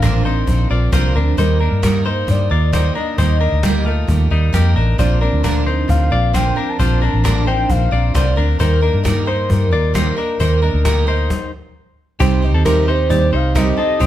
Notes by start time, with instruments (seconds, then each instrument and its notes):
Already playing: fingered electric bass A1, soft synth lead F5
0.02 twelve-string acoustic guitar A#2 D3 F3 C4 D4 A#4, clean electric guitar D4 A#4, cajon bass, cajon slap
0.24 twelve-string acoustic guitar F3 C4 D4 A#4, clean electric guitar D#4 C5
0.47 fingered electric bass A#1, twelve-string acoustic guitar F3 C4 D4 A#4, cajon bass
0.69 fingered electric bass A#1, twelve-string acoustic guitar F3 C4 D4 A#4, clean electric guitar F4 D5
0.92 fingered electric bass C2, twelve-string acoustic guitar A#2 D3 F3 C4 D4 A#4, clean electric guitar F4 C5, cajon bass, cajon slap
1.14 fingered electric bass D2, twelve-string acoustic guitar F3 C4 D4 A#4, clean electric guitar D4 A#4
1.37 fingered electric bass D#2, twelve-string acoustic guitar D#3 G3 A#3 D#4 A#4, clean electric guitar D#4 C5, soft synth lead A#4, cajon bass
1.59 twelve-string acoustic guitar A#3 D#4 A#4, clean electric guitar D4 A#4
1.72 fingered electric bass G2
1.82 twelve-string acoustic guitar D#3 G3 A#3 D#4 A#4, clean electric guitar D#4 A#4, cajon bass, cajon slap
2.05 twelve-string acoustic guitar A#3 D#4 A#4, clean electric guitar D#4 C5, soft synth lead C5
2.27 fingered electric bass G2, twelve-string acoustic guitar G3 A#3 D#4 A#4, soft synth lead D5, cajon bass
2.50 fingered electric bass D#2, twelve-string acoustic guitar A#3 D#4 A#4, clean electric guitar F4 D5
2.72 twelve-string acoustic guitar D#3 G3 A#3 D#4 A#4, clean electric guitar D#4 C5, cajon bass, cajon slap
2.95 twelve-string acoustic guitar A#3 D#4 A#4, clean electric guitar D4 A#4, soft synth lead D#5
3.18 fingered electric bass D#2, twelve-string acoustic guitar D#3 G3 A#3 D#4 A#4, clean electric guitar D#4 C5, cajon bass
3.40 twelve-string acoustic guitar A#3 D#4 A#4, clean electric guitar D4 A#4
3.52 fingered electric bass D2
3.63 twelve-string acoustic guitar D#3 G3 A#3 D#4 A#4, clean electric guitar A#3 G4, cajon bass, cajon slap
3.85 clean electric guitar A3 F4, twelve-string acoustic guitar A#3 D#4 A#4
4.07 fingered electric bass D#2, twelve-string acoustic guitar G3 A#3 D#4 A#4, cajon bass
4.30 fingered electric bass D#2, clean electric guitar G3 D#4, twelve-string acoustic guitar A#3 D#4 A#4
4.52 fingered electric bass F2, twelve-string acoustic guitar D#3 G3 A#3 D#4 A#4, clean electric guitar A#3 G4, cajon bass, cajon slap
4.76 fingered electric bass A1, twelve-string acoustic guitar A#3 D#4 A#4, clean electric guitar D4 A#4
4.98 fingered electric bass A#1, twelve-string acoustic guitar A#2 D3 F3 C4 D4 A#4, clean electric guitar F4 C5, soft synth lead D5, cajon bass
5.21 twelve-string acoustic guitar F3 C4 D4 A#4, clean electric guitar D4 A#4, soft synth lead D5
5.33 fingered electric bass D2
5.43 twelve-string acoustic guitar A#2 D3 F3 C4 D4 A#4, clean electric guitar D4 A#4, cajon bass, cajon slap
5.66 twelve-string acoustic guitar F3 C4 D4 A#4, clean electric guitar D#4 C5
5.88 fingered electric bass D2, twelve-string acoustic guitar F3 C4 D4 A#4, soft synth lead F5, cajon bass
6.10 fingered electric bass A#1, twelve-string acoustic guitar F3 C4 D4 A#4, clean electric guitar F4 D5
6.33 twelve-string acoustic guitar A#2 D3 F3 C4 D4 A#4, clean electric guitar F4 C5, soft synth lead G5, cajon bass, cajon slap
6.56 twelve-string acoustic guitar F3 C4 D4 A#4, clean electric guitar D4 A#4
6.69 soft synth lead A5
6.79 fingered electric bass A#1, twelve-string acoustic guitar A#2 D3 F3 C4 D4 A#4, clean electric guitar F4 C5, cajon bass
7.01 twelve-string acoustic guitar F3 C4 D4 A#4, clean electric guitar D4 A#4
7.13 fingered electric bass A1
7.24 twelve-string acoustic guitar A#2 D3 F3 C4 D4 A#4, clean electric guitar D4 A#4, cajon bass, cajon slap
7.46 twelve-string acoustic guitar F3 C4 D4 A#4, clean electric guitar D#4 C5, soft synth lead G5
7.69 fingered electric bass A#1, twelve-string acoustic guitar F3 C4 D4 A#4, soft synth lead F5, cajon bass
7.91 fingered electric bass A#1, twelve-string acoustic guitar F3 C4 D4 A#4, clean electric guitar F4 D5
8.14 fingered electric bass C2, twelve-string acoustic guitar A#2 D3 F3 C4 D4 A#4, clean electric guitar F4 C5, soft synth lead D5, cajon bass, cajon slap
8.36 fingered electric bass D2, twelve-string acoustic guitar F3 C4 D4 A#4, clean electric guitar D4 A#4
8.59 fingered electric bass D#2, twelve-string acoustic guitar D#3 G3 A#3 D#4 A#4, clean electric guitar D#4 C5, soft synth lead A#4, cajon bass
8.81 twelve-string acoustic guitar A#3 D#4 A#4, clean electric guitar D4 A#4
8.93 fingered electric bass G2
9.04 twelve-string acoustic guitar D#3 G3 A#3 D#4 A#4, clean electric guitar D#4 A#4, cajon bass, cajon slap
9.26 twelve-string acoustic guitar A#3 D#4 A#4, clean electric guitar D#4 C5, soft synth lead C5
9.49 fingered electric bass G2, twelve-string acoustic guitar G3 A#3 D#4 A#4, soft synth lead A#4, cajon bass
9.71 fingered electric bass D#2, twelve-string acoustic guitar A#3 D#4 A#4, clean electric guitar F4 D5
9.94 twelve-string acoustic guitar D#3 G3 A#3 D#4 A#4, clean electric guitar D#4 C5, cajon bass, cajon slap
10.16 twelve-string acoustic guitar A#3 D#4 A#4, clean electric guitar D4 A#4, soft synth lead A#4
10.39 fingered electric bass D#2, twelve-string acoustic guitar D#3 G3 A#3 D#4 A#4, clean electric guitar D#4 C5, cajon bass
10.62 twelve-string acoustic guitar A#3 D#4 A#4, clean electric guitar D4 A#4
10.74 fingered electric bass D2
10.85 twelve-string acoustic guitar D#3 G3 A#3 D#4 A#4, clean electric guitar D#4 A#4, cajon bass, cajon slap
11.07 twelve-string acoustic guitar A#3 D#4 A#4, clean electric guitar D#4 C5
11.30 cajon bass, cajon slap
12.20 fingered electric bass C2, twelve-string acoustic guitar C3 G3 C4 D#4 G4, clean electric guitar C4 G4, reed electric piano D#4 G4 C5, cajon bass
12.42 twelve-string acoustic guitar C4 D#4 G4
12.54 fingered electric bass D#2, clean electric guitar C4 A4
12.65 twelve-string acoustic guitar C3 G3 C4 D#4 G4, reed electric piano D#4 G4 C5, clean electric guitar D#4 A#4, soft synth lead A#4, cajon bass, cajon slap
12.87 twelve-string acoustic guitar C4 D#4 G4, clean electric guitar D#4 C5, soft synth lead C5
13.09 fingered electric bass D#2, twelve-string acoustic guitar G3 C4 D#4 G4, reed electric piano D#4 G4 C5, clean electric guitar G4 D5, soft synth lead C5, cajon bass
13.32 fingered electric bass C2, twelve-string acoustic guitar C4 D#4 G4, clean electric guitar D#4 C5, soft synth lead F5
13.54 twelve-string acoustic guitar C3 G3 C4 D#4 G4, reed electric piano D#4 G4 C5, clean electric guitar D#4 A#4, soft synth lead D#5, cajon bass, cajon slap
13.77 clean electric guitar C4 A4, twelve-string acoustic guitar C4 D#4 G4, soft synth lead D#5
13.99 fingered electric bass C2, twelve-string acoustic guitar C3 G3 C4 D#4 G4, clean electric guitar C4 G4, reed electric piano D#4 G4 C5, cajon bass